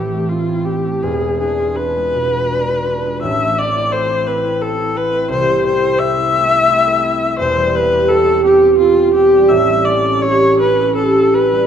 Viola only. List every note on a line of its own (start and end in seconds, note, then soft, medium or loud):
0.00 0.30 G4 medium
0.29 0.66 F4 medium
0.65 1.04 G4 medium
1.02 1.39 G#4 medium
1.40 1.77 G#4 medium
1.76 3.21 B4 loud
3.22 3.60 E5 loud
3.59 3.94 D5 loud
3.92 4.28 C5 loud
4.27 4.63 B4 medium
4.61 4.98 A4 loud
4.96 5.30 B4 loud
5.31 5.65 C5 loud
5.66 6.00 C5 loud
5.99 7.38 E5 loud
7.39 7.77 C5 loud
7.75 8.10 B4 loud
8.08 8.44 A4 loud
8.45 8.78 G4 loud
8.78 9.13 F4 loud
9.14 9.50 G4 loud
9.49 9.86 E5 loud
9.85 10.23 D5 loud
10.21 10.59 C#5 loud
10.59 10.96 B4 loud
10.96 11.35 A4 loud
11.34 11.67 B4 loud